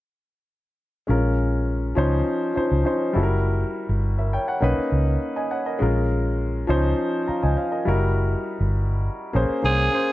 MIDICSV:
0, 0, Header, 1, 5, 480
1, 0, Start_track
1, 0, Key_signature, -5, "minor"
1, 0, Tempo, 589391
1, 887, Time_signature, 4, 2, 24, 8
1, 8246, End_track
2, 0, Start_track
2, 0, Title_t, "Alto saxophone"
2, 0, Program_c, 0, 65
2, 7862, Note_on_c, 0, 68, 94
2, 8246, Note_off_c, 0, 68, 0
2, 8246, End_track
3, 0, Start_track
3, 0, Title_t, "Grand piano"
3, 0, Program_c, 1, 0
3, 871, Note_on_c, 1, 56, 63
3, 880, Note_on_c, 1, 61, 68
3, 886, Note_on_c, 1, 65, 60
3, 897, Note_on_c, 1, 70, 75
3, 1060, Control_c, 1, 64, 127
3, 1588, Note_off_c, 1, 61, 0
3, 1589, Note_on_c, 1, 53, 82
3, 1599, Note_off_c, 1, 56, 0
3, 1600, Note_on_c, 1, 61, 81
3, 1607, Note_off_c, 1, 65, 0
3, 1608, Note_on_c, 1, 63, 71
3, 1612, Note_off_c, 1, 70, 0
3, 1614, Note_on_c, 1, 72, 87
3, 1619, Control_c, 1, 64, 0
3, 1757, Control_c, 1, 64, 127
3, 2001, Note_off_c, 1, 53, 0
3, 2006, Note_off_c, 1, 61, 0
3, 2010, Note_off_c, 1, 63, 0
3, 2013, Note_off_c, 1, 72, 0
3, 2068, Note_on_c, 1, 53, 62
3, 2078, Note_on_c, 1, 61, 61
3, 2086, Note_on_c, 1, 63, 61
3, 2096, Note_on_c, 1, 72, 79
3, 2279, Note_off_c, 1, 53, 0
3, 2284, Note_off_c, 1, 61, 0
3, 2288, Note_off_c, 1, 63, 0
3, 2293, Note_off_c, 1, 72, 0
3, 2309, Note_on_c, 1, 53, 63
3, 2318, Note_on_c, 1, 61, 67
3, 2328, Note_on_c, 1, 63, 62
3, 2334, Note_on_c, 1, 72, 76
3, 2551, Note_on_c, 1, 55, 77
3, 2558, Note_off_c, 1, 53, 0
3, 2560, Note_on_c, 1, 64, 75
3, 2563, Note_off_c, 1, 61, 0
3, 2566, Note_on_c, 1, 66, 60
3, 2567, Note_off_c, 1, 63, 0
3, 2570, Note_off_c, 1, 72, 0
3, 2576, Note_on_c, 1, 69, 62
3, 2579, Control_c, 1, 64, 0
3, 2625, Note_off_c, 1, 69, 0
3, 2630, Note_on_c, 1, 70, 78
3, 2727, Control_c, 1, 64, 127
3, 3319, Note_off_c, 1, 70, 0
3, 3365, Note_off_c, 1, 55, 0
3, 3370, Note_off_c, 1, 64, 0
3, 3372, Note_off_c, 1, 66, 0
3, 3408, Note_on_c, 1, 76, 55
3, 3413, Note_on_c, 1, 70, 48
3, 3522, Note_off_c, 1, 76, 0
3, 3524, Note_off_c, 1, 70, 0
3, 3529, Note_on_c, 1, 79, 64
3, 3533, Note_on_c, 1, 73, 55
3, 3642, Note_off_c, 1, 79, 0
3, 3643, Note_off_c, 1, 73, 0
3, 3649, Note_on_c, 1, 78, 61
3, 3655, Note_on_c, 1, 73, 46
3, 3750, Note_on_c, 1, 58, 69
3, 3759, Note_on_c, 1, 61, 70
3, 3765, Note_on_c, 1, 63, 72
3, 3775, Note_on_c, 1, 71, 91
3, 3779, Control_c, 1, 64, 0
3, 3876, Note_off_c, 1, 78, 0
3, 3879, Note_off_c, 1, 73, 0
3, 3902, Control_c, 1, 64, 127
3, 3960, Note_off_c, 1, 58, 0
3, 3964, Note_off_c, 1, 61, 0
3, 3967, Note_off_c, 1, 63, 0
3, 3972, Note_off_c, 1, 71, 0
3, 4367, Note_on_c, 1, 80, 60
3, 4371, Note_on_c, 1, 75, 51
3, 4481, Note_off_c, 1, 80, 0
3, 4483, Note_off_c, 1, 75, 0
3, 4488, Note_on_c, 1, 78, 60
3, 4490, Note_on_c, 1, 73, 45
3, 4602, Note_off_c, 1, 78, 0
3, 4603, Note_off_c, 1, 73, 0
3, 4610, Note_on_c, 1, 75, 60
3, 4615, Note_on_c, 1, 70, 53
3, 4713, Note_on_c, 1, 56, 73
3, 4723, Note_on_c, 1, 61, 63
3, 4728, Note_off_c, 1, 70, 0
3, 4732, Note_on_c, 1, 65, 62
3, 4738, Control_c, 1, 64, 0
3, 4741, Note_on_c, 1, 70, 76
3, 4837, Note_off_c, 1, 75, 0
3, 4900, Control_c, 1, 64, 127
3, 5430, Note_off_c, 1, 61, 0
3, 5433, Note_on_c, 1, 53, 82
3, 5441, Note_off_c, 1, 56, 0
3, 5442, Note_on_c, 1, 61, 77
3, 5450, Note_off_c, 1, 65, 0
3, 5450, Note_on_c, 1, 63, 74
3, 5454, Note_off_c, 1, 70, 0
3, 5458, Note_on_c, 1, 72, 91
3, 5459, Control_c, 1, 64, 0
3, 5591, Control_c, 1, 64, 127
3, 5844, Note_off_c, 1, 53, 0
3, 5848, Note_off_c, 1, 61, 0
3, 5852, Note_off_c, 1, 63, 0
3, 5856, Note_off_c, 1, 72, 0
3, 5924, Note_on_c, 1, 82, 55
3, 5929, Note_on_c, 1, 77, 50
3, 6040, Note_off_c, 1, 82, 0
3, 6042, Note_off_c, 1, 77, 0
3, 6048, Note_on_c, 1, 80, 58
3, 6053, Note_on_c, 1, 75, 55
3, 6162, Note_off_c, 1, 80, 0
3, 6165, Note_off_c, 1, 75, 0
3, 6165, Note_on_c, 1, 77, 59
3, 6172, Note_on_c, 1, 72, 50
3, 6281, Note_off_c, 1, 77, 0
3, 6284, Note_off_c, 1, 72, 0
3, 6285, Note_on_c, 1, 75, 58
3, 6289, Note_on_c, 1, 70, 43
3, 6395, Note_on_c, 1, 55, 77
3, 6404, Note_on_c, 1, 64, 61
3, 6408, Note_off_c, 1, 70, 0
3, 6413, Note_on_c, 1, 66, 68
3, 6417, Control_c, 1, 64, 0
3, 6420, Note_on_c, 1, 70, 86
3, 6514, Note_off_c, 1, 75, 0
3, 6544, Control_c, 1, 64, 127
3, 7208, Note_off_c, 1, 55, 0
3, 7212, Note_off_c, 1, 64, 0
3, 7216, Note_off_c, 1, 66, 0
3, 7220, Note_off_c, 1, 70, 0
3, 7601, Note_on_c, 1, 58, 75
3, 7607, Note_on_c, 1, 61, 68
3, 7615, Note_on_c, 1, 68, 66
3, 7619, Control_c, 1, 64, 0
3, 7624, Note_on_c, 1, 72, 84
3, 7757, Control_c, 1, 64, 127
3, 7806, Note_off_c, 1, 58, 0
3, 7809, Note_off_c, 1, 61, 0
3, 7813, Note_off_c, 1, 68, 0
3, 7818, Note_off_c, 1, 72, 0
3, 7838, Note_on_c, 1, 58, 70
3, 7847, Note_on_c, 1, 61, 64
3, 7854, Note_on_c, 1, 68, 60
3, 7864, Note_on_c, 1, 72, 75
3, 8045, Note_off_c, 1, 58, 0
3, 8049, Note_off_c, 1, 61, 0
3, 8053, Note_off_c, 1, 68, 0
3, 8058, Note_off_c, 1, 72, 0
3, 8075, Note_on_c, 1, 58, 64
3, 8084, Note_on_c, 1, 61, 61
3, 8091, Note_on_c, 1, 68, 60
3, 8101, Note_on_c, 1, 72, 73
3, 8246, Note_off_c, 1, 58, 0
3, 8246, Note_off_c, 1, 61, 0
3, 8246, Note_off_c, 1, 68, 0
3, 8246, Note_off_c, 1, 72, 0
3, 8246, End_track
4, 0, Start_track
4, 0, Title_t, "Fingered electric bass"
4, 0, Program_c, 2, 33
4, 890, Note_on_c, 2, 34, 77
4, 1576, Note_off_c, 2, 34, 0
4, 1608, Note_on_c, 2, 37, 81
4, 1799, Note_off_c, 2, 37, 0
4, 2211, Note_on_c, 2, 37, 67
4, 2306, Note_off_c, 2, 37, 0
4, 2573, Note_on_c, 2, 30, 77
4, 2955, Note_off_c, 2, 30, 0
4, 3169, Note_on_c, 2, 31, 81
4, 3553, Note_off_c, 2, 31, 0
4, 3765, Note_on_c, 2, 35, 102
4, 3862, Note_off_c, 2, 35, 0
4, 4008, Note_on_c, 2, 37, 77
4, 4200, Note_off_c, 2, 37, 0
4, 4737, Note_on_c, 2, 34, 75
4, 5420, Note_off_c, 2, 34, 0
4, 5450, Note_on_c, 2, 37, 84
4, 5641, Note_off_c, 2, 37, 0
4, 6055, Note_on_c, 2, 37, 69
4, 6148, Note_off_c, 2, 37, 0
4, 6412, Note_on_c, 2, 30, 84
4, 6795, Note_off_c, 2, 30, 0
4, 7008, Note_on_c, 2, 31, 87
4, 7392, Note_off_c, 2, 31, 0
4, 7614, Note_on_c, 2, 34, 94
4, 7708, Note_off_c, 2, 34, 0
4, 7852, Note_on_c, 2, 36, 83
4, 8043, Note_off_c, 2, 36, 0
4, 8246, End_track
5, 0, Start_track
5, 0, Title_t, "Muted fingered electric bass strokes"
5, 2094, Note_on_c, 9, 29, 41
5, 2175, Note_off_c, 9, 29, 0
5, 3895, Note_on_c, 9, 29, 38
5, 3977, Note_off_c, 9, 29, 0
5, 5935, Note_on_c, 9, 29, 40
5, 6017, Note_off_c, 9, 29, 0
5, 8246, End_track
0, 0, End_of_file